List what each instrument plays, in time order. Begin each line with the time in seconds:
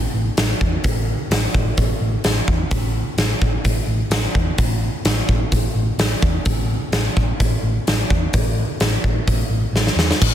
0.14 picked electric bass A1
0.37 picked electric bass A1, snare, open hi-hat
0.61 picked electric bass E2, kick
0.84 picked electric bass A1, kick, open hi-hat
1.30 picked electric bass A1, snare, open hi-hat
1.54 picked electric bass A1, kick
1.77 picked electric bass A1, kick, open hi-hat
2.01 picked electric bass A1
2.24 picked electric bass A1, snare, open hi-hat
2.48 picked electric bass E2, kick
2.71 picked electric bass A1, kick, open hi-hat
3.17 picked electric bass A1, snare, open hi-hat
3.41 picked electric bass A1, kick
3.65 picked electric bass A1, kick, open hi-hat
3.87 picked electric bass A1
4.10 picked electric bass A1, snare, open hi-hat
4.35 picked electric bass E2, kick
4.58 picked electric bass A1, kick, open hi-hat
5.05 picked electric bass A1, snare, open hi-hat
5.28 picked electric bass A1, kick
5.52 picked electric bass A1, kick, open hi-hat
5.75 picked electric bass A1
5.98 picked electric bass A1, snare, open hi-hat
6.22 picked electric bass E2, kick
6.45 picked electric bass A1, kick, open hi-hat
6.92 picked electric bass A1, snare, open hi-hat
7.16 picked electric bass A1, kick
7.39 picked electric bass A1, kick, open hi-hat
7.62 picked electric bass A1
7.87 picked electric bass A1, snare, open hi-hat
8.10 picked electric bass E2, kick
8.33 picked electric bass A1, kick, open hi-hat
8.80 picked electric bass A1, snare, open hi-hat
9.03 picked electric bass A1, kick
9.27 picked electric bass A1, kick, open hi-hat
9.49 picked electric bass A1
9.72 picked electric bass A1, snare
9.87 snare
9.96 picked electric bass E2, snare
10.11 snare
10.21 picked electric bass A1, kick, crash